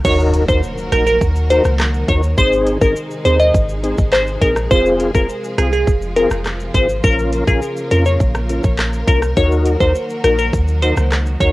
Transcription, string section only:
0.05 4.67 D#3 medium
0.05 2.35 F#3 medium
0.05 2.35 A#3 medium
0.05 2.35 F#4 medium
0.05 2.36 A#4 medium
2.38 7.00 C3 medium
2.38 7.00 G#3 medium
2.38 4.69 D#4 medium
2.38 7.00 G#4 medium
4.71 9.33 F3 medium
4.71 9.33 F4 medium
7.04 9.35 C#3 medium
7.04 11.52 A#3 medium
7.04 11.52 A#4 medium
9.37 11.52 D#3 medium
9.37 11.52 F#3 medium
9.37 11.52 F#4 medium

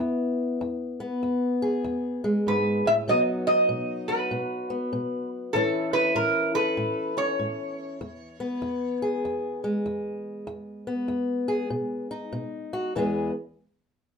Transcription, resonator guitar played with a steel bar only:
2.48 2.87 B4 medium
2.87 2.93 E5 loud
3.09 3.20 D#5 loud
3.47 4.10 D#5 loud
4.08 5.27 B4 medium
5.53 5.94 A4 medium
5.93 6.15 B4 loud
6.16 6.55 A#4 medium
6.55 7.17 B4 loud
7.18 8.98 C#5 medium

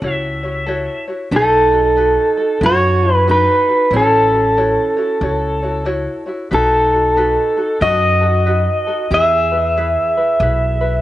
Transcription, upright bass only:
0.02 0.86 C#2 medium
1.31 2.16 B1 medium
2.61 3.46 F#2 loud
3.91 4.75 A1 medium
5.21 6.06 C#2 medium
6.51 7.36 B1 medium
7.81 8.66 F#2 loud
9.11 9.95 E2 medium
10.40 11.02 B1 loud

